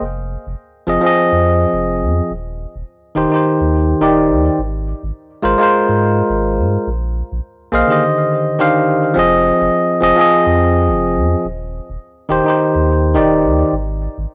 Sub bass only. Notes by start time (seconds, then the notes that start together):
0.01 F1
0.47 F1
0.87 F1
1.32 F2
1.73 F1
2.02 F2
2.31 D#1
2.75 D#1
3.16 D#1
3.61 D#2
4.01 D#1
4.30 D#2
4.58 G#1
5.03 G#1
5.44 G#1
5.89 G#2
6.30 G#1
6.58 G#2
6.87 A#1
7.32 A#1
7.73 A#1
9.16 F1
9.61 F1
10.02 F1
10.46 F2
10.88 F1
11.16 F2
11.45 D#1
11.90 D#1
12.30 D#1
12.75 D#2
13.16 D#1
13.44 D#2
13.73 G#1
14.18 G#1